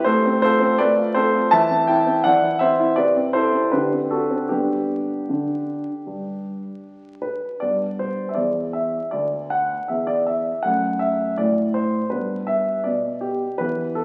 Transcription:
grand piano
0.04 A3 A4 C5
0.26 C4
0.42 F4 A4 C5
0.60 C4
0.78 A3 B4 D5
0.97 F4
1.15 C4 A4 C5
1.33 F4
1.51 E3 E5 A5
1.70 C4
1.87 E4 E5 G5
2.06 C4
2.24 E3 D5 F#5
2.43 E4
2.59 C4 C5 E5
2.79 E4
2.96 C3 B4 D5
3.16 C4
3.33 E4 A4 C5
3.53 C4
3.71 D3 G4 B4
3.92 C4
4.11 F#4 A4
4.30 C4
4.49 G3 B3 D4 G4
5.29 D3
6.06 G2
7.22 B4
7.60 G2 B3 D5
7.99 C5
8.29 E5
8.35 E2 D5
8.73 E5
9.11 D2 D5
9.50 F#5
9.88 E2 E5
10.07 D5
10.26 E5
10.63 F#2 A3 F#5
10.99 E5
11.38 A2 D5
11.74 C5
12.10 G2 B3 B4
12.47 E5
12.84 B2 D5
13.21 G4
13.58 E3 B3 B4
13.95 A4

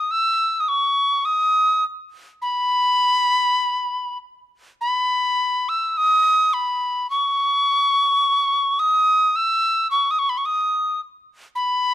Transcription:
tin whistle
Already playing: D#6
0.11 E6
0.60 D#6
0.68 C#6
1.25 D#6
2.42 B5
4.81 B5
5.69 E6
5.97 D#6
6.53 B5
7.10 C#6
8.79 D#6
9.36 E6
9.91 C#6
10.11 D#6
10.19 C#6
10.29 B5
10.38 C#6
10.46 D#6
11.55 B5

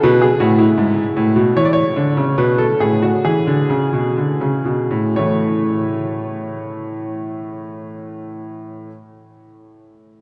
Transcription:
grand piano
0.03 B2 B4
0.22 G#4
0.40 A2 F#4
0.59 E4
0.78 G#2
1.17 A2
1.36 B2
1.56 E3 C#5
1.65 D5
1.73 C#5
1.96 D3
2.17 C#3
2.38 B2 B4
2.58 A4
2.80 A2 G#4
3.02 F#4
3.25 E3 G#4
3.47 D3
3.70 C#3
3.93 B2
4.17 D3
4.41 C#3
4.65 B2
4.91 A2
5.16 A2 E3 A3 C#5

